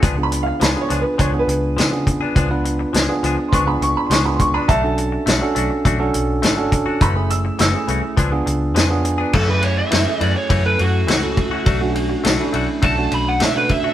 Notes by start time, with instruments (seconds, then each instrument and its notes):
0.02 fingered electric bass C#2, clean electric guitar F3 B3 D4 G#4, kick, closed hi-hat
0.17 tine electric piano B3 D4 F4 G#4, muted clean electric guitar stroke
0.23 upright piano B5
0.32 muted clean electric guitar stroke, closed hi-hat
0.43 upright piano F5, muted clean electric guitar stroke
0.60 fingered electric bass C#2, clean electric guitar F3 B3 D4 G#4, upright piano B5, snare, closed hi-hat
0.76 tine electric piano B3 D4 F4 G#4
0.81 upright piano C#5
0.89 fingered electric bass C#2, clean electric guitar F3 B3 D4 G#4, closed hi-hat
1.01 upright piano B4, muted clean electric guitar stroke
1.18 fingered electric bass C#2, clean electric guitar F3 B3 D4 G#4, upright piano C#5, kick, closed hi-hat
1.33 tine electric piano B3 D4 F4 G#4, muted clean electric guitar stroke
1.39 upright piano B4
1.47 fingered electric bass C#2, muted clean electric guitar stroke, closed hi-hat
1.77 fingered electric bass C#3, clean electric guitar F3 B3 D4 G#4, snare, closed hi-hat
1.92 tine electric piano B3 D4 F4 G#4, muted clean electric guitar stroke
2.06 muted clean electric guitar stroke, kick, closed hi-hat
2.21 clean electric guitar B3 D4 G#4
2.36 fingered electric bass C#2, clean electric guitar F3 B3 D4 G#4, kick, closed hi-hat
2.50 tine electric piano B3 D4 F4 B4, muted clean electric guitar stroke
2.64 muted clean electric guitar stroke, closed hi-hat
2.79 muted clean electric guitar stroke
2.93 fingered electric bass C#2, clean electric guitar F3 B3 D4 G#4, snare, closed hi-hat
3.09 tine electric piano B3 D4 F4 G#4
3.23 fingered electric bass C#2, clean electric guitar F3 B3 D4 G#4, closed hi-hat
3.38 muted clean electric guitar stroke
3.48 clean electric guitar F3, upright piano C6
3.53 fingered electric bass C#2, clean electric guitar B3 D4 G#4, upright piano C#6, kick, closed hi-hat
3.67 tine electric piano B3 D4 F4 G#4, upright piano B5, muted clean electric guitar stroke
3.81 fingered electric bass C#2, upright piano C#6, muted clean electric guitar stroke, closed hi-hat
3.97 upright piano B5
4.06 fingered electric bass C#2, clean electric guitar F3, upright piano C6
4.11 clean electric guitar B3 D4 G#4, upright piano C#6, snare, closed hi-hat
4.25 tine electric piano B3 D4 F4 G#4, upright piano B5, muted clean electric guitar stroke
4.35 upright piano C6
4.40 upright piano C#6, muted clean electric guitar stroke, kick, closed hi-hat
4.54 clean electric guitar B3 D4 G#4, upright piano B5
4.68 fingered electric bass B1, clean electric guitar A3 D4 F#4, upright piano E5 A5, kick, closed hi-hat
4.83 tine electric piano C#4 D4 F#4 A4, muted clean electric guitar stroke
4.98 muted clean electric guitar stroke, closed hi-hat
5.12 muted clean electric guitar stroke
5.26 fingered electric bass B1, clean electric guitar A3 D4 F#4, snare, closed hi-hat
5.41 tine electric piano C#4 D4 F#4 A4
5.55 fingered electric bass B1, clean electric guitar A3 D4 F#4, closed hi-hat
5.71 muted clean electric guitar stroke
5.85 fingered electric bass B1, clean electric guitar A3 D4 F#4, kick, closed hi-hat
5.99 tine electric piano C#4 D4 F#4 A4, muted clean electric guitar stroke
6.14 fingered electric bass B1, muted clean electric guitar stroke, closed hi-hat
6.42 fingered electric bass G#1, clean electric guitar A3 D4 F#4, snare, closed hi-hat
6.57 tine electric piano C#4 D4 F#4 A4, muted clean electric guitar stroke
6.72 muted clean electric guitar stroke, kick, closed hi-hat
6.86 clean electric guitar D4 F#4
7.01 fingered electric bass F#1, clean electric guitar E3 A3 C#4 F#4, upright piano B5, kick, closed hi-hat
7.15 tine electric piano A3 C#4 E4 G#4, muted clean electric guitar stroke
7.30 upright piano E6, muted clean electric guitar stroke, closed hi-hat
7.45 muted clean electric guitar stroke
7.59 fingered electric bass F#1, clean electric guitar E3 A3 C#4 F#4, upright piano E6, snare, closed hi-hat
7.74 tine electric piano A3 C#4 E4 G#4
7.88 fingered electric bass C2, clean electric guitar E3 A3 C#4 F#4, closed hi-hat
8.03 muted clean electric guitar stroke
8.17 fingered electric bass C#2, clean electric guitar F3 B3 D4 G#4, kick, closed hi-hat
8.32 tine electric piano B3 D4 F4 G#4, muted clean electric guitar stroke
8.46 fingered electric bass C#2, muted clean electric guitar stroke, closed hi-hat
8.75 fingered electric bass F2, clean electric guitar F3 B3 D4 G#4, tine electric piano C#5, snare, closed hi-hat
8.89 tine electric piano B3 D4 F4 G#4, muted clean electric guitar stroke
9.04 tine electric piano G#5, muted clean electric guitar stroke, closed hi-hat
9.18 clean electric guitar B3 D4 G#4
9.33 fingered electric bass F#2, clean electric guitar E3 A3 C#4 F#4, lead electric guitar A4, kick, crash
9.48 tine electric piano A3 C#4 E4 G#4, lead electric guitar B4, muted clean electric guitar stroke
9.63 lead electric guitar C#5, muted clean electric guitar stroke, ride
9.77 lead electric guitar E5, muted clean electric guitar stroke
9.91 fingered electric bass F#2, clean electric guitar E3 A3 C#4 F#4, snare, ride
10.07 tine electric piano A3 C#4 E4 G#4
10.20 fingered electric bass F#2, clean electric guitar E3 A3 C#4 F#4, lead electric guitar D5, ride
10.35 lead electric guitar C#5, muted clean electric guitar stroke
10.49 fingered electric bass F#2, clean electric guitar E3 A3 C#4 F#4, kick, ride
10.65 tine electric piano A3 C#4 E4 A4, lead electric guitar B4, muted clean electric guitar stroke
10.79 fingered electric bass F#2, lead electric guitar F#4, muted clean electric guitar stroke, ride
11.07 fingered electric bass C#2, clean electric guitar E3 A3 C#4 F#4, snare, ride
11.22 tine electric piano A3 C#4 E4 A4, muted clean electric guitar stroke
11.37 muted clean electric guitar stroke, kick, ride
11.51 clean electric guitar A3 C#4 F#4
11.66 fingered electric bass B1, clean electric guitar A3 D4 F#4, kick, ride
11.81 tine electric piano A3 C#4 D4 F#4, muted clean electric guitar stroke
11.95 muted clean electric guitar stroke, ride
12.10 muted clean electric guitar stroke
12.24 fingered electric bass B1, clean electric guitar A3 D4 F#4, snare, ride
12.40 tine electric piano A3 C#4 D4 E4
12.53 fingered electric bass B1, clean electric guitar A3 D4 F#4, ride
12.68 muted clean electric guitar stroke
12.82 fingered electric bass B1, clean electric guitar A3 D4 F#4, lead electric guitar A5, kick, ride
12.97 tine electric piano A3 C#4 D4 F#4, muted clean electric guitar stroke
13.12 fingered electric bass B1, lead electric guitar B5, muted clean electric guitar stroke, ride
13.28 lead electric guitar F#5
13.40 fingered electric bass B2, clean electric guitar A3 D4 F#4, lead electric guitar E5, snare, ride
13.55 tine electric piano A3 C#4 D4 F#4, lead electric guitar B4, muted clean electric guitar stroke
13.69 lead electric guitar E5, muted clean electric guitar stroke, kick, ride
13.84 clean electric guitar D4 F#4